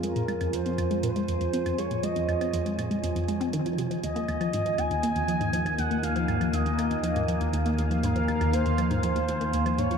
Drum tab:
HH |xxxxxxxxxxxxxxxx|xxxxxxxxxxxxxxxx|xxxxxxxxxxxxxxxx|xxxxxxxxxxxxxxxx|
CL |--xx--x------x--|--xx--x---------|--xx--x------x--|--xx--x---------|

HH |xxxxxxxxxxxxxxxx|
CL |--xx--x------x--|